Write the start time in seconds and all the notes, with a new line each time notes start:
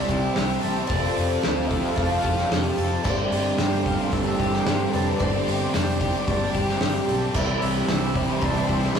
Already playing: C3 G3 C4 E4 G4 C5 D5 E5 C6
0.08 C2 C4 E4 G4, kick, snare, open hi-hat
0.34 G3 C4 E4 C5, snare, open hi-hat
0.38 C2 G4
0.61 A1 A4, open hi-hat
0.86 F1 F3 C5 D5 F5 A5, kick, open hi-hat
0.91 C4 F4 G4 A4
1.16 F1 C4 F4 A4, open hi-hat
1.42 D2 F3 C4 F4 A4 C5, snare, open hi-hat
1.67 F4 A4 E5, kick, open hi-hat
1.72 C4
1.96 F1 A4 F5, kick, open hi-hat
2.23 F1 C4 F4 G4 A4, kick, open hi-hat
2.38 snare
2.49 F1 F3 C4 F4 A4, snare, open hi-hat
2.78 F1 A4, open hi-hat
3.04 G1 G2 D3 G3 C4 D4 G4 C5 D5 C6, kick, crash
3.30 G1 G3 C4 D4 G4 D5, open hi-hat
3.57 G1 G3 C4 D4 G4 C5, snare, open hi-hat
3.84 G3 C4 D4 G4 F5, kick, open hi-hat
4.12 G1 A4 E5, kick, open hi-hat
4.38 G1 G3 C4 D4 G4, kick, open hi-hat
4.53 snare
4.65 G1 G3 C4 D4 G4 D5, snare, open hi-hat
4.93 F1 A4 B4, open hi-hat
5.18 G1 G2 D3 G3 C4 D4 G4 C5 D5, kick, open hi-hat
5.45 G1 G3 C4 D4 G4, open hi-hat
5.73 F1 G3 C4 D4 G4 C5 D5, snare, open hi-hat
6.00 G3 C4 D4 G4, kick, open hi-hat
6.27 G1 A4 D5, kick, open hi-hat
6.53 G1 G3 C4 D4 G4, kick, open hi-hat
6.69 snare
6.79 G1 G3 C4 D4 G4, snare, open hi-hat
7.08 B1 A4, open hi-hat
7.34 C2 C3 E3 G3 C4 E4 C5 D5 E5 C6, kick, crash
7.38 E5
7.60 C2 G3 C4 E4, open hi-hat
7.88 C2 E3 G3 C4 E4 C5 E5, snare, open hi-hat
8.15 G3 C4 E4 C5, kick, open hi-hat
8.41 C2 A4 D5, kick, open hi-hat
8.67 C2 G3 C4 E4 G4, kick, open hi-hat
8.83 snare
8.95 E3, snare, open hi-hat